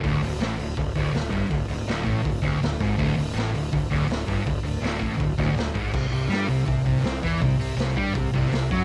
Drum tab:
CC |----------------|----------------|----------------|----------------|
HH |o-o-o-o-o-o-o-o-|o-o-o-o-o-o-o-o-|o-o-o-o-o-o-o-o-|o-o-o-o-o-o-o-o-|
SD |----o-------o---|----o-------o-o-|----o-------o-o-|----o-------o---|
BD |o-------o-o---o-|o-----o-o-o---o-|o-------o-o---o-|o-----o-o-o---o-|

CC |x---------------|----------------|
HH |--o-o-o-o-o-o-o-|o-o-o-o-o-o-o-o-|
SD |----o------oo-o-|----o------oo---|
BD |o-------o-o---o-|o-----o-o-o---o-|